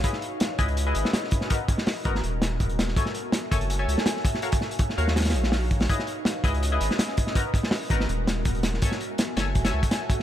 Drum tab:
HH |x---x---x---x-x-x---x---x---x---|x---x---o---x---x---x---x-x-x---|x---x---x---x-x-x---x---x---x---|x-x---x-x---x---xxxxx---o---x-o-|
SD |--o-----o-------------o-o-o---o-|------o-o-----o-----o-------o-o-|--o-----o-------------o-o-o---o-|----o-----o---o-oooo--o-o-----o-|
BD |o-----------o---------------o---|o---o-------o-----------o-------|o-----------o---------------o---|--o-----o-------------------o---|

HH |x---x---x---x-x-x---x---x---x---|x---x---o---x---x---x---x-x-x---|x---x---x---x---x-x---x-x---x---|
SD |--o-----o-------------o-o-o---o-|------o-o-----o-----o-------o-o-|--o-----o---o-----o-----o-----o-|
BD |o-----------o---------------o---|o---o-------o-----------o-------|o---------------o-----o-----o---|